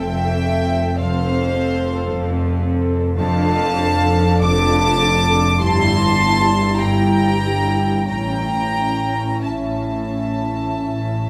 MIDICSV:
0, 0, Header, 1, 6, 480
1, 0, Start_track
1, 0, Key_signature, -1, "major"
1, 0, Tempo, 1077199
1, 921, Tempo, 1123596
1, 1401, Tempo, 1226994
1, 1402, Time_signature, 4, 2, 24, 8
1, 1402, Key_signature, -1, "minor"
1, 1881, Tempo, 1188119
1, 2841, Tempo, 1282051
1, 3321, Tempo, 1360544
1, 3801, Tempo, 1318681
1, 4478, End_track
2, 0, Start_track
2, 0, Title_t, "Violin section"
2, 0, Program_c, 0, 48
2, 0, Note_on_c, 0, 79, 107
2, 442, Note_on_c, 0, 77, 97
2, 444, Note_off_c, 0, 79, 0
2, 1140, Note_off_c, 0, 77, 0
2, 1403, Note_on_c, 0, 81, 122
2, 1867, Note_off_c, 0, 81, 0
2, 1883, Note_on_c, 0, 86, 127
2, 2362, Note_off_c, 0, 86, 0
2, 2363, Note_on_c, 0, 84, 127
2, 2843, Note_off_c, 0, 84, 0
2, 2844, Note_on_c, 0, 82, 112
2, 3319, Note_off_c, 0, 82, 0
2, 3324, Note_on_c, 0, 82, 110
2, 3794, Note_off_c, 0, 82, 0
2, 3807, Note_on_c, 0, 81, 73
2, 4478, Note_off_c, 0, 81, 0
2, 4478, End_track
3, 0, Start_track
3, 0, Title_t, "Violin section"
3, 0, Program_c, 1, 48
3, 0, Note_on_c, 1, 76, 90
3, 441, Note_on_c, 1, 72, 101
3, 444, Note_off_c, 1, 76, 0
3, 1154, Note_off_c, 1, 72, 0
3, 1404, Note_on_c, 1, 77, 100
3, 1867, Note_off_c, 1, 77, 0
3, 1882, Note_on_c, 1, 81, 114
3, 2358, Note_off_c, 1, 81, 0
3, 2362, Note_on_c, 1, 81, 120
3, 2833, Note_off_c, 1, 81, 0
3, 2844, Note_on_c, 1, 79, 99
3, 3320, Note_off_c, 1, 79, 0
3, 3324, Note_on_c, 1, 79, 90
3, 3794, Note_off_c, 1, 79, 0
3, 3805, Note_on_c, 1, 76, 62
3, 4478, Note_off_c, 1, 76, 0
3, 4478, End_track
4, 0, Start_track
4, 0, Title_t, "Viola section"
4, 0, Program_c, 2, 48
4, 0, Note_on_c, 2, 60, 76
4, 0, Note_on_c, 2, 69, 76
4, 193, Note_off_c, 2, 69, 0
4, 194, Note_off_c, 2, 60, 0
4, 206, Note_on_c, 2, 60, 69
4, 207, Note_on_c, 2, 69, 67
4, 675, Note_off_c, 2, 60, 0
4, 676, Note_off_c, 2, 69, 0
4, 686, Note_on_c, 2, 60, 74
4, 686, Note_on_c, 2, 69, 74
4, 1148, Note_off_c, 2, 60, 0
4, 1148, Note_off_c, 2, 69, 0
4, 1157, Note_on_c, 2, 60, 71
4, 1157, Note_on_c, 2, 69, 76
4, 1397, Note_off_c, 2, 60, 0
4, 1397, Note_off_c, 2, 69, 0
4, 1402, Note_on_c, 2, 62, 81
4, 1402, Note_on_c, 2, 69, 82
4, 1636, Note_off_c, 2, 62, 0
4, 1636, Note_off_c, 2, 69, 0
4, 1642, Note_on_c, 2, 62, 88
4, 1644, Note_on_c, 2, 69, 88
4, 2112, Note_off_c, 2, 62, 0
4, 2113, Note_off_c, 2, 69, 0
4, 2123, Note_on_c, 2, 62, 75
4, 2123, Note_on_c, 2, 69, 82
4, 2357, Note_off_c, 2, 62, 0
4, 2357, Note_off_c, 2, 69, 0
4, 2363, Note_on_c, 2, 64, 87
4, 2364, Note_on_c, 2, 67, 84
4, 2597, Note_off_c, 2, 64, 0
4, 2598, Note_off_c, 2, 67, 0
4, 2602, Note_on_c, 2, 64, 76
4, 2603, Note_on_c, 2, 67, 77
4, 3065, Note_off_c, 2, 64, 0
4, 3065, Note_off_c, 2, 67, 0
4, 3075, Note_on_c, 2, 64, 64
4, 3076, Note_on_c, 2, 67, 69
4, 3317, Note_off_c, 2, 64, 0
4, 3318, Note_off_c, 2, 67, 0
4, 3324, Note_on_c, 2, 61, 60
4, 3325, Note_on_c, 2, 64, 59
4, 3559, Note_off_c, 2, 61, 0
4, 3559, Note_off_c, 2, 64, 0
4, 3563, Note_on_c, 2, 61, 67
4, 3565, Note_on_c, 2, 64, 62
4, 4037, Note_off_c, 2, 61, 0
4, 4038, Note_off_c, 2, 64, 0
4, 4049, Note_on_c, 2, 61, 55
4, 4049, Note_on_c, 2, 64, 53
4, 4478, Note_off_c, 2, 61, 0
4, 4478, Note_off_c, 2, 64, 0
4, 4478, End_track
5, 0, Start_track
5, 0, Title_t, "Cello section"
5, 0, Program_c, 3, 48
5, 0, Note_on_c, 3, 41, 75
5, 391, Note_off_c, 3, 41, 0
5, 450, Note_on_c, 3, 41, 84
5, 868, Note_off_c, 3, 41, 0
5, 921, Note_on_c, 3, 41, 96
5, 1342, Note_off_c, 3, 41, 0
5, 1402, Note_on_c, 3, 41, 112
5, 1826, Note_off_c, 3, 41, 0
5, 1884, Note_on_c, 3, 41, 99
5, 2305, Note_off_c, 3, 41, 0
5, 2361, Note_on_c, 3, 43, 98
5, 2785, Note_off_c, 3, 43, 0
5, 2842, Note_on_c, 3, 43, 98
5, 3262, Note_off_c, 3, 43, 0
5, 3321, Note_on_c, 3, 45, 75
5, 3745, Note_off_c, 3, 45, 0
5, 3800, Note_on_c, 3, 45, 75
5, 4229, Note_off_c, 3, 45, 0
5, 4284, Note_on_c, 3, 45, 61
5, 4478, Note_off_c, 3, 45, 0
5, 4478, End_track
6, 0, Start_track
6, 0, Title_t, "Double bass section"
6, 0, Program_c, 4, 48
6, 0, Note_on_c, 4, 29, 74
6, 389, Note_off_c, 4, 29, 0
6, 444, Note_on_c, 4, 29, 88
6, 865, Note_off_c, 4, 29, 0
6, 919, Note_on_c, 4, 29, 81
6, 1341, Note_off_c, 4, 29, 0
6, 1402, Note_on_c, 4, 29, 93
6, 1826, Note_off_c, 4, 29, 0
6, 1883, Note_on_c, 4, 29, 98
6, 2305, Note_off_c, 4, 29, 0
6, 2361, Note_on_c, 4, 31, 100
6, 2785, Note_off_c, 4, 31, 0
6, 2845, Note_on_c, 4, 31, 79
6, 3264, Note_off_c, 4, 31, 0
6, 3323, Note_on_c, 4, 33, 84
6, 3747, Note_off_c, 4, 33, 0
6, 3802, Note_on_c, 4, 33, 69
6, 4230, Note_off_c, 4, 33, 0
6, 4287, Note_on_c, 4, 33, 69
6, 4478, Note_off_c, 4, 33, 0
6, 4478, End_track
0, 0, End_of_file